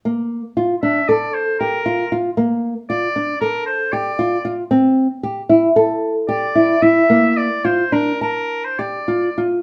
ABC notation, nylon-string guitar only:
X:1
M:9/8
L:1/8
Q:3/8=77
K:Gdor
V:1 name="Nylon-string guitar"
B,2 F D A2 G F F | B,2 F D A2 G F F | C2 G E A2 G E E | B,2 F D a2 G F F |]